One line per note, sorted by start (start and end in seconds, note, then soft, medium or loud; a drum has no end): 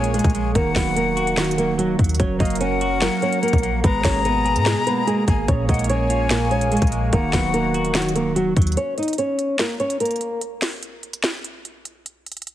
0.00 0.20 A#1 loud
0.00 0.55 A#2 medium
0.00 0.13 G#3 medium
0.00 0.34 A#3 medium
0.00 0.54 A#3 medium
0.00 0.10 C#4 medium
0.00 0.55 F4 medium
0.00 0.54 G#4 medium
0.00 0.54 C#5 medium
0.00 0.51 G#5 loud
0.00 closed hi-hat medium
0.14 0.34 G#3 medium
0.14 0.53 G#3 medium
0.14 0.53 G#4 medium
0.14 closed hi-hat medium
0.19 closed hi-hat medium
0.24 0.54 A#1 loud
0.24 kick loud
0.24 closed hi-hat medium
0.30 closed hi-hat soft
0.35 0.55 G#3 medium
0.35 closed hi-hat medium
0.55 0.75 D#1 loud
0.55 1.35 D#3 loud
0.55 2.18 D#3 medium
0.55 2.18 A#3 medium
0.55 0.72 A#3 medium
0.55 2.18 F#4 medium
0.55 0.71 A#4 medium
0.55 1.74 F#5 loud
0.55 kick loud
0.55 closed hi-hat medium
0.76 1.95 D#1 loud
0.76 1.57 F#3 medium
0.76 0.92 B3 medium
0.76 0.92 B4 medium
0.76 finger snap medium
0.76 kick medium
0.76 snare loud
0.76 open hi-hat medium
0.96 1.35 A#3 medium
0.96 1.99 A#3 medium
0.96 1.35 A#4 medium
0.96 closed hi-hat medium
1.17 2.20 F#4 loud
1.17 closed hi-hat medium
1.27 closed hi-hat medium
1.37 2.19 D#3 medium
1.37 1.54 F#3 medium
1.37 1.53 F#4 medium
1.37 finger snap loud
1.37 snare loud
1.37 closed hi-hat soft
1.44 closed hi-hat medium
1.51 closed hi-hat medium
1.58 1.77 F#3 medium
1.58 1.74 A#3 medium
1.58 1.74 A#4 medium
1.58 closed hi-hat medium
1.78 1.98 F#3 medium
1.78 1.95 F#3 medium
1.78 1.95 F#4 loud
1.78 closed hi-hat medium
1.99 2.19 D#2 loud
1.99 2.18 F#3 medium
1.99 kick medium
1.99 closed hi-hat medium
2.04 closed hi-hat medium
2.09 closed hi-hat medium
2.15 closed hi-hat medium
2.20 2.39 F#1 loud
2.20 3.01 F#3 loud
2.20 3.82 F#3 medium
2.20 2.36 C#4 medium
2.20 3.82 F#4 medium
2.20 3.82 A#4 medium
2.20 2.36 C#5 medium
2.20 kick loud
2.20 closed hi-hat medium
2.39 3.09 F#1 loud
2.39 3.21 A#3 medium
2.39 2.57 D#4 medium
2.39 2.56 D#5 medium
2.39 2.60 F5 medium
2.39 kick medium
2.39 closed hi-hat soft
2.45 closed hi-hat medium
2.50 closed hi-hat medium
2.55 closed hi-hat medium
2.61 3.64 C#4 medium
2.61 3.00 C#4 medium
2.61 2.99 C#5 medium
2.61 3.80 F#5 loud
2.61 closed hi-hat medium
2.81 3.84 F#4 medium
2.81 closed hi-hat medium
3.02 3.83 F#3 medium
3.02 3.18 A#3 medium
3.02 3.18 A#4 medium
3.02 finger snap medium
3.02 snare loud
3.02 closed hi-hat medium
3.22 3.41 A#3 medium
3.22 3.39 C#4 medium
3.22 3.38 C#5 medium
3.22 closed hi-hat soft
3.33 closed hi-hat medium
3.42 3.62 A#3 medium
3.42 3.82 A#3 medium
3.42 3.81 A#4 medium
3.42 closed hi-hat medium
3.48 closed hi-hat medium
3.53 3.83 A#1 loud
3.53 kick loud
3.53 closed hi-hat soft
3.58 closed hi-hat soft
3.63 3.84 A#3 medium
3.63 closed hi-hat medium
3.84 4.04 G#1 loud
3.84 5.47 B2 medium
3.84 4.64 G#3 medium
3.84 4.01 B3 medium
3.84 7.09 G#4 medium
3.84 4.00 B4 medium
3.84 5.47 A#5 medium
3.84 5.24 A#5 loud
3.84 kick loud
3.84 closed hi-hat medium
4.04 4.57 G#1 loud
4.04 4.86 A#3 medium
4.04 4.21 C#4 medium
4.04 4.21 C#5 medium
4.04 finger snap medium
4.04 kick medium
4.04 snare loud
4.04 open hi-hat medium
4.25 5.28 B3 medium
4.25 4.64 B3 medium
4.25 4.64 B4 medium
4.25 closed hi-hat medium
4.45 5.48 G#4 medium
4.45 closed hi-hat soft
4.56 4.75 G#2 loud
4.56 closed hi-hat medium
4.66 5.48 G#3 medium
4.66 4.83 G#3 medium
4.66 4.82 G#4 medium
4.66 finger snap medium
4.66 snare loud
4.66 closed hi-hat medium
4.87 5.06 A#3 medium
4.87 5.03 B3 medium
4.87 5.03 B4 medium
4.87 closed hi-hat medium
5.07 5.24 G#3 medium
5.07 5.27 A#3 medium
5.07 5.23 G#4 loud
5.07 closed hi-hat medium
5.28 5.48 G#1 loud
5.28 5.48 A#3 medium
5.28 5.47 G#5 medium
5.28 kick medium
5.28 closed hi-hat medium
5.48 5.68 A#1 loud
5.48 6.29 A#2 loud
5.48 8.74 A#3 medium
5.48 5.65 C#4 medium
5.48 7.11 C#5 medium
5.48 5.65 C#5 medium
5.48 kick loud
5.48 closed hi-hat medium
5.69 6.78 A#1 loud
5.69 6.50 G#3 medium
5.69 5.86 D#4 medium
5.69 5.85 D#5 medium
5.69 5.88 F#5 medium
5.69 kick loud
5.69 closed hi-hat soft
5.74 closed hi-hat medium
5.79 closed hi-hat medium
5.84 closed hi-hat medium
5.89 6.92 A#3 medium
5.89 6.29 C#4 medium
5.89 6.28 C#5 medium
5.89 7.09 G#5 loud
5.89 closed hi-hat medium
6.10 7.13 F4 medium
6.10 closed hi-hat medium
6.30 7.13 A#2 medium
6.30 6.47 A#3 medium
6.30 6.47 A#4 medium
6.30 finger snap loud
6.30 snare loud
6.30 closed hi-hat medium
6.51 6.71 G#3 medium
6.51 6.68 C#4 medium
6.51 6.67 C#5 medium
6.51 closed hi-hat soft
6.61 closed hi-hat medium
6.72 6.91 G#3 medium
6.72 7.11 G#3 medium
6.72 7.10 G#4 medium
6.72 closed hi-hat medium
6.77 closed hi-hat medium
6.82 7.11 A#1 loud
6.82 kick loud
6.82 closed hi-hat medium
6.87 closed hi-hat soft
6.92 7.13 G#3 medium
6.92 closed hi-hat medium
7.12 7.32 D#1 loud
7.12 8.76 D#3 medium
7.12 7.93 D#3 loud
7.12 7.29 A#3 medium
7.12 8.75 F#4 medium
7.12 7.29 A#4 medium
7.12 8.32 F#5 loud
7.12 kick loud
7.12 closed hi-hat medium
7.33 8.53 D#1 loud
7.33 8.14 F#3 medium
7.33 7.50 B3 medium
7.33 7.49 B4 medium
7.33 finger snap medium
7.33 kick loud
7.33 snare medium
7.33 open hi-hat medium
7.54 7.93 A#3 medium
7.54 8.57 A#3 medium
7.54 7.92 A#4 medium
7.54 closed hi-hat medium
7.74 8.77 F#4 loud
7.74 closed hi-hat medium
7.85 closed hi-hat medium
7.94 8.77 D#3 medium
7.94 8.11 F#3 medium
7.94 8.11 F#4 medium
7.94 finger snap medium
7.94 snare loud
7.94 closed hi-hat soft
8.02 closed hi-hat medium
8.09 closed hi-hat medium
8.15 8.34 F#3 medium
8.15 8.32 A#3 medium
8.15 8.32 A#4 medium
8.15 closed hi-hat medium
8.36 8.55 F#3 medium
8.36 8.53 F#3 medium
8.36 8.52 F#4 loud
8.36 closed hi-hat medium
8.57 8.76 D#2 loud
8.57 8.77 F#3 medium
8.57 kick medium
8.57 closed hi-hat medium
8.62 closed hi-hat medium
8.67 closed hi-hat medium
8.72 closed hi-hat medium
8.77 8.94 C#4 medium
8.77 8.93 C#5 medium
8.77 closed hi-hat medium
8.98 9.14 D#4 medium
8.98 9.14 D#5 medium
8.98 closed hi-hat soft
9.03 closed hi-hat medium
9.08 closed hi-hat medium
9.13 closed hi-hat medium
9.18 9.57 C#4 medium
9.18 9.57 C#5 medium
9.18 closed hi-hat medium
9.39 closed hi-hat medium
9.59 9.76 A#3 medium
9.59 9.75 A#4 medium
9.59 finger snap medium
9.59 snare loud
9.59 closed hi-hat medium
9.80 9.96 C#4 medium
9.80 9.96 C#5 medium
9.80 closed hi-hat soft
9.90 closed hi-hat medium
10.00 10.39 A#3 medium
10.00 10.39 A#4 medium
10.00 closed hi-hat medium
10.05 closed hi-hat medium
10.11 closed hi-hat medium
10.16 closed hi-hat soft
10.21 closed hi-hat medium
10.41 closed hi-hat medium
10.62 finger snap medium
10.62 snare medium
10.62 open hi-hat medium
10.83 closed hi-hat medium
11.03 closed hi-hat soft
11.13 closed hi-hat medium
11.24 finger snap loud
11.24 snare loud
11.24 closed hi-hat medium
11.44 closed hi-hat medium
11.65 closed hi-hat medium
11.85 closed hi-hat medium
12.06 closed hi-hat medium
12.26 closed hi-hat soft
12.32 closed hi-hat medium
12.37 closed hi-hat medium
12.42 closed hi-hat medium
12.47 closed hi-hat medium